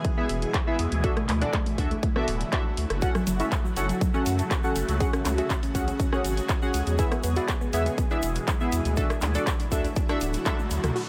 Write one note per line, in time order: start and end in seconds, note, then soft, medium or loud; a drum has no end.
0.00 1.02 B2 medium
0.00 1.02 E3 medium
0.00 1.00 G#3 medium
0.00 2.98 E4 medium
0.00 1.00 G#4 medium
0.05 0.14 E3 medium
0.05 kick loud
0.05 closed hi-hat medium
0.17 0.94 B3 medium
0.17 0.26 B3 medium
0.17 0.26 E4 medium
0.17 0.26 G#4 medium
0.17 0.26 E5 loud
0.29 0.45 E1 medium
0.29 open hi-hat loud
0.42 closed hi-hat medium
0.54 kick loud
0.54 clap loud
0.54 closed hi-hat medium
0.67 0.76 B3 loud
0.67 0.76 E4 medium
0.67 0.76 G#4 medium
0.67 0.76 E5 loud
0.79 0.87 E2 loud
0.79 open hi-hat loud
0.92 1.07 D2 medium
0.92 closed hi-hat medium
1.04 3.00 D3 medium
1.04 6.95 F#3 medium
1.04 3.00 A3 medium
1.04 1.13 D4 medium
1.04 1.13 F#4 loud
1.04 1.13 F#4 medium
1.04 3.00 F#4 medium
1.04 1.13 A4 medium
1.04 1.13 E5 medium
1.04 kick loud
1.04 closed hi-hat medium
1.17 1.25 A3 medium
1.17 cross-stick medium
1.17 closed hi-hat soft
1.28 1.45 D2 loud
1.28 1.38 A3 medium
1.28 clap medium
1.28 open hi-hat loud
1.41 1.50 D4 loud
1.41 1.50 D4 medium
1.41 1.50 F#4 medium
1.41 1.50 A4 medium
1.41 1.50 D5 medium
1.41 closed hi-hat soft
1.53 1.63 A3 medium
1.53 kick loud
1.53 clap loud
1.53 closed hi-hat medium
1.66 1.75 A3 medium
1.66 open hi-hat medium
1.78 1.94 D2 medium
1.78 1.88 D4 medium
1.78 1.88 F#4 medium
1.78 1.88 A4 medium
1.78 1.88 E5 loud
1.78 kick medium
1.78 open hi-hat loud
1.91 2.00 A3 medium
1.91 closed hi-hat soft
2.03 2.12 A3 medium
2.03 kick loud
2.03 closed hi-hat medium
2.16 2.93 B3 medium
2.16 2.25 D4 medium
2.16 2.25 F#4 medium
2.16 2.25 A4 medium
2.16 2.25 E5 loud
2.16 cross-stick medium
2.28 2.44 D1 medium
2.28 open hi-hat loud
2.41 closed hi-hat soft
2.53 2.62 D4 medium
2.53 2.62 F#4 medium
2.53 2.62 A4 medium
2.53 2.62 E5 loud
2.53 kick loud
2.53 clap loud
2.53 closed hi-hat medium
2.77 2.85 D2 medium
2.77 open hi-hat loud
2.90 3.06 F#1 medium
2.90 cross-stick medium
2.90 closed hi-hat medium
3.02 6.95 C#3 medium
3.02 4.99 A3 medium
3.02 3.12 C#4 medium
3.02 3.12 F#4 loud
3.02 3.12 F#4 medium
3.02 6.95 F#4 medium
3.02 4.99 A4 medium
3.02 3.12 A4 medium
3.02 3.12 F#5 medium
3.02 kick loud
3.02 closed hi-hat medium
3.02 shaker soft
3.15 3.24 F#3 medium
3.15 cross-stick medium
3.15 closed hi-hat soft
3.15 shaker soft
3.27 3.43 F#1 loud
3.27 3.36 F#3 medium
3.27 open hi-hat loud
3.27 shaker loud
3.40 3.49 C#4 medium
3.40 3.48 E4 medium
3.40 3.49 F#4 medium
3.40 3.49 A4 medium
3.40 3.49 E5 medium
3.40 closed hi-hat soft
3.40 shaker soft
3.52 3.61 F#3 medium
3.52 kick loud
3.52 clap loud
3.52 closed hi-hat medium
3.52 shaker medium
3.65 3.73 F#3 medium
3.65 shaker soft
3.76 3.93 F#1 medium
3.76 3.86 C#4 medium
3.76 3.86 F#4 medium
3.76 3.86 A4 medium
3.76 3.86 F#5 loud
3.76 open hi-hat loud
3.76 shaker medium
3.89 3.98 F#3 medium
3.89 closed hi-hat medium
3.89 shaker soft
4.01 4.11 F#3 medium
4.01 kick loud
4.01 closed hi-hat medium
4.01 shaker medium
4.14 4.91 C#4 medium
4.14 4.23 C#4 medium
4.14 4.23 F#4 medium
4.14 4.23 A4 medium
4.14 4.23 F#5 loud
4.14 shaker soft
4.26 4.42 F#2 medium
4.26 open hi-hat loud
4.26 shaker medium
4.39 closed hi-hat medium
4.39 shaker soft
4.51 kick loud
4.51 clap loud
4.51 closed hi-hat medium
4.51 shaker soft
4.64 4.73 C#4 medium
4.64 4.73 F#4 medium
4.64 4.73 A4 medium
4.64 4.73 F#5 loud
4.64 shaker soft
4.76 4.84 F#1 loud
4.76 open hi-hat loud
4.76 shaker medium
4.88 5.04 C#2 loud
4.88 closed hi-hat medium
4.88 shaker soft
5.00 8.93 G#3 medium
5.00 5.10 C#4 medium
5.00 5.10 F#4 medium
5.00 6.97 G#4 medium
5.00 5.10 G#4 medium
5.00 5.10 G#4 loud
5.00 5.10 F#5 loud
5.00 kick loud
5.00 closed hi-hat medium
5.00 shaker soft
5.13 5.22 C#4 medium
5.13 cross-stick medium
5.13 closed hi-hat soft
5.13 shaker soft
5.25 5.41 C#2 loud
5.25 5.35 C#4 medium
5.25 clap medium
5.25 open hi-hat loud
5.25 shaker medium
5.38 5.47 C#4 medium
5.38 5.47 F#4 medium
5.38 5.47 F#4 loud
5.38 5.47 G#4 medium
5.38 5.47 E5 medium
5.38 closed hi-hat soft
5.38 shaker soft
5.50 5.59 C#4 medium
5.50 kick loud
5.50 clap loud
5.50 closed hi-hat medium
5.50 shaker medium
5.63 5.72 C#4 medium
5.63 open hi-hat medium
5.63 shaker soft
5.75 5.91 C#2 medium
5.75 5.84 C#4 medium
5.75 5.84 F#4 medium
5.75 5.84 G#4 medium
5.75 5.84 F#5 loud
5.75 kick medium
5.75 open hi-hat loud
5.75 shaker medium
5.88 5.96 C#4 medium
5.88 closed hi-hat medium
5.88 shaker soft
6.00 6.09 C#4 medium
6.00 kick loud
6.00 closed hi-hat medium
6.00 shaker soft
6.12 6.89 C#4 medium
6.12 6.21 C#4 medium
6.12 6.21 F#4 medium
6.12 6.21 G#4 medium
6.12 6.21 F#5 loud
6.12 cross-stick medium
6.12 shaker soft
6.24 6.40 G#1 medium
6.24 open hi-hat loud
6.24 shaker medium
6.37 closed hi-hat medium
6.37 shaker soft
6.49 kick loud
6.49 clap loud
6.49 closed hi-hat medium
6.49 shaker medium
6.62 6.71 C#4 loud
6.62 6.71 F#4 medium
6.62 6.71 G#4 medium
6.62 6.71 F#5 loud
6.62 shaker soft
6.74 6.82 C#2 loud
6.74 open hi-hat loud
6.74 shaker medium
6.87 7.02 E2 medium
6.87 closed hi-hat medium
6.87 shaker soft
6.98 8.95 B2 medium
6.98 8.95 E3 medium
6.98 7.08 B3 medium
6.98 10.92 E4 medium
6.98 7.08 E4 medium
6.98 7.08 G#4 loud
6.98 7.08 G#4 medium
6.98 8.95 G#4 medium
6.98 7.08 E5 loud
6.98 kick loud
6.98 closed hi-hat medium
6.98 shaker medium
7.12 7.20 B3 medium
7.12 cross-stick medium
7.12 closed hi-hat soft
7.12 shaker soft
7.24 7.40 E2 loud
7.24 7.33 B3 medium
7.24 open hi-hat medium
7.24 shaker medium
7.36 7.45 B3 medium
7.36 7.45 E4 medium
7.36 7.45 F#4 medium
7.36 7.45 G#4 medium
7.36 7.45 D5 medium
7.36 closed hi-hat medium
7.36 shaker soft
7.48 7.58 B3 medium
7.48 kick loud
7.48 clap loud
7.48 closed hi-hat medium
7.48 shaker medium
7.61 7.70 B3 medium
7.61 shaker soft
7.73 7.89 E2 medium
7.73 7.83 B3 loud
7.73 7.83 E4 medium
7.73 7.83 G#4 medium
7.73 7.83 E5 loud
7.73 open hi-hat loud
7.73 shaker medium
7.86 7.95 B3 medium
7.86 closed hi-hat medium
7.86 shaker soft
7.98 8.07 B3 medium
7.98 kick loud
7.98 closed hi-hat medium
7.98 shaker soft
8.10 8.20 B3 medium
8.10 8.88 D4 medium
8.10 8.20 E4 medium
8.10 8.20 G#4 medium
8.10 8.20 E5 loud
8.10 shaker soft
8.22 8.39 E1 medium
8.22 open hi-hat loud
8.22 shaker medium
8.35 closed hi-hat medium
8.35 shaker soft
8.48 kick loud
8.48 clap loud
8.48 closed hi-hat medium
8.48 shaker soft
8.60 8.69 B3 loud
8.60 8.69 E4 medium
8.60 8.69 G#4 medium
8.60 8.69 E5 loud
8.60 shaker soft
8.72 8.81 E2 loud
8.72 open hi-hat loud
8.72 shaker medium
8.85 9.01 D2 medium
8.85 closed hi-hat medium
8.85 shaker soft
8.97 10.94 D3 medium
8.97 10.94 F#3 medium
8.97 10.94 A3 medium
8.97 9.07 D4 medium
8.97 10.94 F#4 medium
8.97 9.07 F#4 medium
8.97 9.07 A4 loud
8.97 9.07 A4 medium
8.97 9.07 E5 loud
8.97 kick loud
8.97 closed hi-hat medium
8.97 shaker medium
9.10 9.19 D4 medium
9.10 cross-stick medium
9.10 closed hi-hat soft
9.10 shaker soft
9.21 9.38 D2 loud
9.21 9.31 D4 medium
9.21 clap medium
9.21 open hi-hat loud
9.21 shaker medium
9.35 9.44 D4 medium
9.35 9.44 F#4 medium
9.35 9.44 A4 medium
9.35 9.44 D5 medium
9.35 closed hi-hat medium
9.35 shaker soft
9.47 9.56 D4 medium
9.47 kick loud
9.47 clap loud
9.47 closed hi-hat medium
9.47 shaker medium
9.60 9.68 D4 medium
9.60 open hi-hat medium
9.60 shaker soft
9.72 9.88 D2 medium
9.72 9.81 D4 medium
9.72 9.81 F#4 medium
9.72 9.81 A4 medium
9.72 9.81 E5 loud
9.72 kick medium
9.72 open hi-hat loud
9.72 shaker medium
9.84 9.93 D4 medium
9.84 closed hi-hat medium
9.84 shaker soft
9.96 10.06 D4 medium
9.96 kick loud
9.96 closed hi-hat medium
9.96 shaker medium
10.09 10.86 D4 medium
10.09 10.18 D4 medium
10.09 10.18 F#4 medium
10.09 10.18 A4 medium
10.09 10.18 E5 loud
10.09 cross-stick medium
10.09 closed hi-hat soft
10.09 shaker soft
10.21 10.37 D1 medium
10.21 open hi-hat loud
10.21 shaker medium
10.33 closed hi-hat medium
10.33 shaker soft
10.46 10.56 D4 medium
10.46 10.56 F#4 medium
10.46 10.56 A4 medium
10.46 10.56 E5 loud
10.46 kick loud
10.46 clap loud
10.46 closed hi-hat medium
10.46 high tom medium
10.46 shaker soft
10.59 high tom medium
10.59 shaker soft
10.70 10.79 D2 medium
10.70 open hi-hat loud
10.70 shaker medium
10.84 10.91 D2 medium
10.84 cross-stick medium
10.84 closed hi-hat medium
10.84 mid tom medium
10.84 shaker soft
10.96 11.05 F#4 medium
10.96 crash medium
10.96 downlifter medium